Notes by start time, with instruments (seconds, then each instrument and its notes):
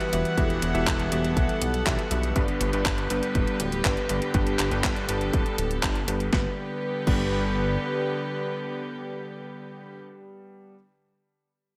Already playing: string section E3 G3 B3 B4 F#5
0.01 closed hi-hat
0.13 analog synth bass E1, electric grand piano E3 B3 F#4 G4 E5, closed hi-hat
0.25 closed hi-hat
0.37 analog synth bass E1, electric grand piano E3 B3 F#4 G4 E5, string section A4, kick, closed hi-hat
0.50 closed hi-hat
0.62 analog synth bass E1, closed hi-hat
0.74 analog synth bass E1, electric grand piano E3 B3 F#4 G4 E5, closed hi-hat
0.87 analog synth bass E1, kick, clap, closed hi-hat
1.00 closed hi-hat
1.12 analog synth bass E1, electric grand piano E3 B3 F#4 G4 E5, closed hi-hat
1.24 closed hi-hat
1.37 analog synth bass B1, kick, closed hi-hat
1.49 closed hi-hat
1.62 analog synth bass B1, closed hi-hat
1.74 closed hi-hat
1.86 analog synth bass B1, electric grand piano E3 B3 F#4 G4 E5, kick, clap, closed hi-hat
1.99 closed hi-hat
2.11 analog synth bass B1, electric grand piano G2 B3 F#4 G4 E5, closed hi-hat
2.23 closed hi-hat
2.36 analog synth bass G1, electric grand piano G2 G3 B3 D4 B4, string section D3 G3 G4 B4, kick, closed hi-hat
2.48 closed hi-hat
2.61 analog synth bass G1, closed hi-hat
2.73 analog synth bass G1, electric grand piano G2 G3 B3 D4 B4, closed hi-hat
2.85 analog synth bass G1, kick, clap, closed hi-hat
2.98 closed hi-hat
3.10 analog synth bass G1, electric grand piano G2 G3 B3 D4 B4, closed hi-hat
3.23 closed hi-hat
3.35 analog synth bass D1, kick, closed hi-hat
3.47 closed hi-hat
3.60 analog synth bass D1, closed hi-hat
3.72 closed hi-hat
3.85 analog synth bass G1, electric grand piano G2 G3 B3 D4 B4, kick, clap, closed hi-hat
3.97 closed hi-hat
4.09 analog synth bass G1, electric grand piano G2 G3 B3 D4 B4, closed hi-hat
4.22 closed hi-hat
4.34 analog synth bass G1, electric grand piano G2 G3 B3 D4 B4, string section A4, kick, closed hi-hat
4.47 closed hi-hat
4.59 analog synth bass G1, clap, closed hi-hat
4.71 analog synth bass G1, electric grand piano G2 G3 B3 D4 B4, closed hi-hat
4.84 analog synth bass G1, kick, clap, closed hi-hat
4.96 closed hi-hat
5.09 analog synth bass G1, electric grand piano G2 G3 B3 D4 B4, closed hi-hat
5.21 closed hi-hat
5.33 analog synth bass D1, kick, closed hi-hat
5.46 closed hi-hat
5.58 analog synth bass D1, closed hi-hat
5.71 closed hi-hat
5.83 analog synth bass G1, electric grand piano G2 G3 B3 D4 B4, kick, clap, closed hi-hat
5.95 closed hi-hat
6.08 analog synth bass G1, electric grand piano G2 G3 B3 D4 B4, closed hi-hat
6.20 closed hi-hat
6.33 analog synth bass G1, string section D3 G3 B3 G4 B4, electric grand piano G3 B3 D4 B4, kick, snare
7.07 analog synth bass G1, electric grand piano G3 B3 D4 B4, kick, crash